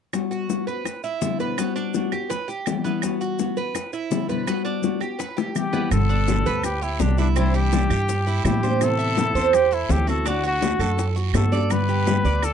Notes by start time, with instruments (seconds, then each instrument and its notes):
0.13 nylon-string guitar G3 B3 F#4, high bongo, claves, maracas
0.31 cuban tres F#4, maracas
0.49 nylon-string guitar G3 B3 F#4, high bongo, maracas
0.67 nylon-string guitar B3 F#4, cuban tres B4, maracas
0.84 muted nylon-string guitar stroke, high bongo, claves, maracas
1.04 cuban tres E4, maracas
1.21 nylon-string guitar D3 G3 B3 E4, high bongo, low bongo, maracas
1.39 nylon-string guitar B2 D3 G3 B3 E4, cuban tres B4, maracas
1.58 nylon-string guitar G3 B3 F#4, cuban tres B3, high bongo, claves, maracas
1.76 cuban tres D4, high bongo, maracas
1.94 nylon-string guitar G3 B3 F#4, high bongo, maracas
2.12 nylon-string guitar B3 F#4, cuban tres G4, high bongo, claves, maracas
2.30 cuban tres B4, muted nylon-string guitar stroke, high bongo, maracas
2.48 cuban tres G4, high bongo, maracas
2.66 nylon-string guitar E3 G3 B3 E4, high bongo, low bongo, claves, maracas
2.84 nylon-string guitar E3 G3 B3 E4, cuban tres B3, maracas
3.02 nylon-string guitar G3 B3 F#4, high bongo, claves, maracas
3.21 cuban tres F#4, maracas
3.39 nylon-string guitar G3 B3 F#4, high bongo, maracas
3.57 nylon-string guitar B3 F#4, cuban tres B4, maracas
3.75 muted nylon-string guitar stroke, high bongo, claves, maracas
3.93 cuban tres E4, maracas
4.10 nylon-string guitar D3 G3 B3 E4, high bongo, low bongo, maracas
4.28 nylon-string guitar B2 D3 G3 B3 E4, cuban tres B4, maracas
4.47 nylon-string guitar G3 B3 F#4, cuban tres B3, high bongo, claves, maracas
4.65 cuban tres D4, high bongo, maracas
4.82 nylon-string guitar G3 B3 F#4, high bongo, maracas
5.01 nylon-string guitar B3 F#4, cuban tres G4, high bongo, claves, maracas
5.19 cuban tres B4, muted nylon-string guitar stroke, high bongo, maracas
5.37 cuban tres G4, high bongo, maracas
5.55 nylon-string guitar E3 G3 B3 E4, trumpet G4, low bongo, claves, maracas
5.73 nylon-string guitar E3 G3 B3 E4, cuban tres B3, low bongo, maracas
5.91 upright bass G1, nylon-string guitar B2 D3 G3 B3 G4, trumpet A4, high bongo, high conga, long guiro, claves, maracas
6.10 cuban tres D4, high conga, maracas
6.27 nylon-string guitar B2 D3 G3 B3 G4, high bongo, high conga, short guiro, maracas
6.45 upright bass D2, nylon-string guitar G3 B3 G4, cuban tres B4, short guiro, maracas
6.63 trumpet G4, muted nylon-string guitar stroke, high bongo, high conga, long guiro, claves, maracas
6.82 trumpet E4, cuban tres G4, high conga, maracas
6.99 upright bass C2, nylon-string guitar D3 G3 B3 G4, trumpet D4, high bongo, low bongo, high conga, short guiro, maracas
7.18 nylon-string guitar D3 G3 B3 G4, trumpet D4, cuban tres E4, high conga, short guiro, maracas
7.36 nylon-string guitar C3 E3 G3 D4 E4, cuban tres C4, trumpet E4, high bongo, high conga, long guiro, claves, maracas
7.54 cuban tres E4, trumpet G4, high bongo, high conga, maracas
7.72 nylon-string guitar C3 E3 G3 D4 E4, high bongo, high conga, short guiro, maracas
7.90 upright bass G2, nylon-string guitar G3 D4 E4, cuban tres G4, high bongo, high conga, short guiro, claves, maracas
8.08 muted nylon-string guitar stroke, high bongo, high conga, long guiro, maracas
8.27 cuban tres E4, high bongo, high conga, maracas
8.44 upright bass A2, nylon-string guitar E3 G3 D4 E4, trumpet G4, high bongo, low bongo, high conga, short guiro, claves, maracas
8.63 nylon-string guitar E3 G3 D4 E4, cuban tres C5, high conga, short guiro, maracas
8.81 nylon-string guitar C3 E3 B3 C4 E4, trumpet A4, high bongo, high conga, long guiro, claves, maracas
8.99 cuban tres E4, high conga, maracas
9.17 nylon-string guitar C3 E3 B3 C4 E4, high bongo, high conga, short guiro, maracas
9.34 upright bass E2, nylon-string guitar B3 C4 E4, cuban tres C5, short guiro, maracas
9.53 trumpet G4, muted nylon-string guitar stroke, high bongo, high conga, long guiro, claves, maracas
9.71 trumpet E4, cuban tres A4, high conga, maracas
9.89 upright bass D2, nylon-string guitar E3 B3 C4 E4, trumpet G4, high bongo, low bongo, high conga, short guiro, maracas
10.07 nylon-string guitar E3 B3 C4 E4, cuban tres F#4, trumpet A4, high conga, short guiro, maracas
10.25 nylon-string guitar D3 A3 D4 F#4, cuban tres D4, trumpet F#4, high bongo, high conga, long guiro, claves, maracas
10.44 cuban tres F#4, trumpet F#4, high bongo, high conga, maracas
10.61 nylon-string guitar D3 A3 D4 F#4, high bongo, high conga, short guiro, maracas
10.79 upright bass F#2, nylon-string guitar A3 D4 F#4, cuban tres A4, high bongo, high conga, short guiro, claves, maracas
10.97 muted nylon-string guitar stroke, high bongo, high conga, long guiro, maracas
11.16 cuban tres F#4, high bongo, high conga, maracas
11.33 upright bass G2, nylon-string guitar D3 A3 D4 F#4, trumpet A4, high bongo, low bongo, high conga, short guiro, claves, maracas
11.52 nylon-string guitar A3 D4 F#4, cuban tres D5, high conga, short guiro, maracas
11.70 nylon-string guitar D3 G3 B3 G4, trumpet B4, high bongo, high conga, long guiro, claves, maracas
11.89 cuban tres G4, high conga, maracas
12.07 nylon-string guitar D3 G3 B3 G4, high bongo, high conga, short guiro, maracas
12.24 upright bass D2, nylon-string guitar G3 B3 G4, cuban tres D5, short guiro, maracas
12.42 trumpet A4, muted nylon-string guitar stroke, high bongo, high conga, long guiro, claves, maracas